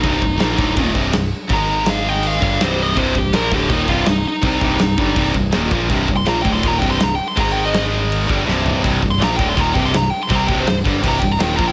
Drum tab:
CC |x-x-x-x-|x-x-x-x-|x-x-x-x-|x-x-x-x-|
SD |--o---o-|--o---o-|--o---o-|--o---o-|
FT |--------|--------|--------|--------|
BD |oo-ooo--|o----o--|oo-ooo--|oo-ooo-o|

CC |x-x-x-x-|x-x-x---|x-x-x-x-|x-x-x-x-|
SD |--o---o-|--o---o-|--o---o-|--o---o-|
FT |--------|-------o|--------|--------|
BD |oo-ooo--|o----o--|oo-ooo--|oo-ooo-o|